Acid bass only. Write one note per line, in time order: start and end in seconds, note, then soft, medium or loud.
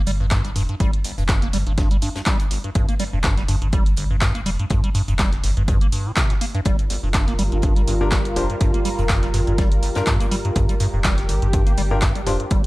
0.07 0.11 G3 loud
0.20 0.26 G2 medium
0.31 0.42 G2 loud
0.45 0.51 G3 medium
0.56 0.63 G2 loud
0.69 0.75 G2 medium
0.80 0.91 G3 loud
1.05 1.12 G1 medium
1.18 1.24 G2 medium
1.29 1.40 G2 loud
1.42 1.48 A#3 medium
1.53 1.58 G3 loud
1.67 1.73 G2 medium
1.78 1.89 G2 loud
1.91 1.97 G3 medium
2.02 2.09 G2 medium
2.16 2.22 G2 medium
2.27 2.38 G3 loud
2.51 2.58 G1 medium
2.64 2.70 G2 medium
2.75 2.86 G2 loud
2.89 2.95 A#3 medium
3.00 3.04 G3 loud
3.13 3.19 G2 medium
3.24 3.35 G2 loud
3.37 3.44 G3 medium
3.48 3.56 G2 loud
3.62 3.68 G2 medium
3.73 3.84 G3 loud
3.97 4.05 G1 medium
4.11 4.17 G2 medium
4.22 4.33 G2 loud
4.35 4.41 A#3 medium
4.46 4.50 G3 loud
4.59 4.65 G2 medium
4.70 4.81 G2 loud
4.84 4.90 G3 medium
4.95 5.02 G2 loud
5.08 5.14 G2 medium
5.19 5.30 G3 loud
5.44 5.51 G1 medium
5.57 5.63 G2 medium
5.68 5.79 G2 loud
5.81 5.87 A#3 medium
5.93 6.07 G2 medium
6.06 6.12 A#2 medium
6.17 6.32 C3 medium
6.30 6.34 G2 medium
6.41 6.46 A#3 medium
6.55 6.61 G2 loud
6.66 6.77 G3 loud
6.90 6.97 G1 medium
7.03 7.09 G2 medium
7.14 7.25 G2 loud
7.28 7.34 A#3 medium
7.39 7.43 G3 loud
7.52 7.58 G2 medium
7.63 7.74 G2 loud
7.77 7.83 G3 medium
7.88 7.95 G2 loud
8.01 8.07 G2 medium
8.12 8.23 G3 loud
8.36 8.44 G1 medium
8.50 8.56 G2 medium
8.61 8.72 G2 loud
8.74 8.80 A#3 medium
8.85 8.90 G3 loud
8.99 9.05 G2 medium
9.10 9.21 G2 loud
9.23 9.29 G3 medium
9.34 9.41 G2 loud
9.47 9.53 G2 medium
9.58 9.69 G3 loud
9.83 9.90 G1 medium
9.96 10.02 G2 medium
10.07 10.18 G2 loud
10.20 10.27 A#3 medium
10.32 10.36 G3 loud
10.45 10.51 G2 medium
10.56 10.67 G2 loud
10.69 10.75 G3 medium
10.80 10.88 G2 loud
10.94 11.00 G2 medium
11.05 11.16 G3 loud
11.29 11.36 G1 medium
11.42 11.48 G2 medium
11.53 11.64 G2 loud
11.67 11.73 A#3 medium
11.78 11.82 G3 loud
11.91 11.97 G2 medium
12.02 12.13 G2 loud
12.16 12.22 G3 medium
12.27 12.34 G2 loud
12.40 12.46 G2 medium
12.51 12.62 G3 loud